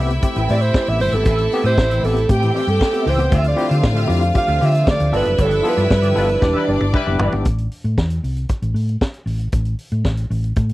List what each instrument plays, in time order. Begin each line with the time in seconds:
Already playing: fingered electric bass C2, tonewheel organ A3 C4 G4, tine electric piano B3, string section E4 E5
0.00 tine electric piano C4 G4
0.10 muted clean electric guitar stroke, closed hi-hat
0.22 tine electric piano C4 G4, muted clean electric guitar stroke, kick, closed hi-hat
0.36 fingered electric bass A1, tine electric piano A2 E3, clean electric guitar C4 G4 B4 G5, closed hi-hat
0.49 fingered electric bass A2, clean electric guitar C4 G4 B4 E5, tine electric piano C4 G4, alto saxophone D5, open hi-hat
0.61 alto saxophone C5, muted clean electric guitar stroke, closed hi-hat
0.74 clean electric guitar C4 G4 B4 E5, kick, snare
0.86 fingered electric bass A1, tine electric piano B3 C4 G4, alto saxophone E5, muted clean electric guitar stroke, closed hi-hat
1.00 fingered electric bass G1, tine electric piano A2 E3, alto saxophone C5, muted clean electric guitar stroke, open hi-hat
1.12 fingered electric bass G#1, tine electric piano B3 C4 G4, clean electric guitar C4 G4 B4 E5, alto saxophone A4, closed hi-hat
1.25 fingered electric bass A1, tine electric piano A2 E3, clean electric guitar C4 G4 B4 E5, kick, closed hi-hat
1.38 muted clean electric guitar stroke, closed hi-hat
1.51 tine electric piano B3 C4 G4, muted clean electric guitar stroke, open hi-hat
1.64 fingered electric bass A2, clean electric guitar C4 G4 B4 E5, tine electric piano C4 G4, alto saxophone C5, closed hi-hat
1.77 fingered electric bass A1, tine electric piano C4 G4, muted clean electric guitar stroke, kick, snare
1.89 tine electric piano A2 E3, clean electric guitar C4 G4 B4 E5, closed hi-hat
2.02 fingered electric bass A1, tine electric piano B3 C4 G4, clean electric guitar C4 G4 B4 E5, alto saxophone A4, open hi-hat
2.15 muted clean electric guitar stroke, closed hi-hat
2.28 fingered electric bass A2, tine electric piano C4 G4, alto saxophone G4, string section G4 G5, muted clean electric guitar stroke, kick, closed hi-hat
2.40 tine electric piano A2 E3, clean electric guitar C4 G4 B4 G5, closed hi-hat
2.53 clean electric guitar C4 G4 B4 E5, tine electric piano C4 G4, open hi-hat
2.67 fingered electric bass G2, alto saxophone A4, muted clean electric guitar stroke, closed hi-hat
2.80 muted clean electric guitar stroke, kick, snare
2.92 tine electric piano B3 C4 G4, clean electric guitar C4 G4 B4 E5, closed hi-hat
3.05 fingered electric bass C#2, tine electric piano A2 E3, clean electric guitar C4 G4 B4 E5, open hi-hat
3.09 alto saxophone C5
3.18 tine electric piano B3 C4 G4, muted clean electric guitar stroke, closed hi-hat
3.31 fingered electric bass D2, tine electric piano D3 A3, tonewheel organ D3 F3 A3 D4 G4, clean electric guitar F4 G4 C5 E5, string section F4 F5, alto saxophone E5, kick, closed hi-hat
3.44 muted clean electric guitar stroke, closed hi-hat
3.48 alto saxophone D5
3.57 tine electric piano C4 E4 F4 G4, muted clean electric guitar stroke, open hi-hat
3.69 fingered electric bass D3, tine electric piano F4 G4, clean electric guitar F4 G4 C5 E5, closed hi-hat
3.83 fingered electric bass A2, muted clean electric guitar stroke, kick, snare
3.94 tine electric piano D3 A3, clean electric guitar G4 C5 E5, closed hi-hat
3.98 clean electric guitar F4
4.07 fingered electric bass F2, tine electric piano C4 E4 F4 G4, clean electric guitar F4 G4 C5 E5, open hi-hat
4.21 muted clean electric guitar stroke, closed hi-hat
4.34 tine electric piano F4 G4, alto saxophone F5, muted clean electric guitar stroke, kick, closed hi-hat
4.47 fingered electric bass D2, tine electric piano D3 A3, clean electric guitar F4 G4 C5 F5, closed hi-hat
4.60 fingered electric bass D3, clean electric guitar F4 G4 C5 E5, tine electric piano F4 G4, open hi-hat
4.65 alto saxophone E5
4.73 muted clean electric guitar stroke, closed hi-hat
4.87 tine electric piano D3 A3, alto saxophone D5, kick, snare
4.99 fingered electric bass D2, muted clean electric guitar stroke, closed hi-hat
5.11 fingered electric bass G1, tonewheel organ G3 D4 A4 B4, clean electric guitar B3 F4 G4 D5, tine electric piano B3 F4 A4, string section E4 E5, open hi-hat
5.16 alto saxophone B4
5.25 fingered electric bass F#1, tine electric piano F4 A4, muted clean electric guitar stroke, closed hi-hat
5.37 fingered electric bass G1, tine electric piano G2 D3, clean electric guitar B3 F4 G4 D5, kick, closed hi-hat
5.42 alto saxophone A4
5.50 muted clean electric guitar stroke, closed hi-hat
5.63 tine electric piano B3 F4 A4, muted clean electric guitar stroke, open hi-hat
5.69 alto saxophone B4
5.77 fingered electric bass G2, clean electric guitar B3 F4 G4 D5, tine electric piano F4 A4, closed hi-hat
5.90 fingered electric bass G2, tine electric piano F4 A4, muted clean electric guitar stroke, kick, snare
6.02 tine electric piano G2 D3, clean electric guitar B3 F4 G4 D5, closed hi-hat
6.15 fingered electric bass G1, horn section G3 F4 B4, tine electric piano B3 F4 A4, clean electric guitar B3 F4 G4 D5, open hi-hat
6.28 muted clean electric guitar stroke, closed hi-hat
6.41 fingered electric bass E1, tonewheel organ G3 E4, tine electric piano D4 G4, string section D4 D5, muted clean electric guitar stroke, kick, snare
6.53 tine electric piano E3, horn section G3 E4 B4, clean electric guitar D4 G4 B4 E5
6.66 fingered electric bass G1, clean electric guitar D4 G4 B4 D5, tine electric piano D4 G4
6.80 fingered electric bass G1, muted clean electric guitar stroke, high tom
6.93 horn section G3 E4 B4, kick, mid tom
7.06 fingered electric bass F#1, tine electric piano B3 D4 G4, muted clean electric guitar stroke, mid tom
7.19 fingered electric bass G1, tine electric piano E3, clean electric guitar D4 G4 B4 D5, floor tom
7.32 fingered electric bass G#1, tine electric piano B3 D4 G4, muted clean electric guitar stroke, floor tom
7.45 fingered electric bass A1, kick, closed hi-hat
7.58 closed hi-hat
7.72 open hi-hat
7.84 fingered electric bass A2, closed hi-hat
7.98 fingered electric bass E2, kick, snare
8.10 closed hi-hat
8.24 fingered electric bass C2, open hi-hat
8.36 closed hi-hat
8.49 kick, closed hi-hat
8.62 fingered electric bass A1, closed hi-hat
8.74 fingered electric bass A2, open hi-hat
8.89 closed hi-hat
9.01 kick, snare
9.14 closed hi-hat
9.26 fingered electric bass A1, open hi-hat
9.39 closed hi-hat
9.52 fingered electric bass A1, kick, closed hi-hat
9.65 closed hi-hat
9.79 open hi-hat
9.92 fingered electric bass A2, closed hi-hat
10.04 fingered electric bass A1, kick, snare
10.17 closed hi-hat
10.30 fingered electric bass A1, open hi-hat
10.44 closed hi-hat
10.56 fingered electric bass A2, kick, closed hi-hat
10.69 closed hi-hat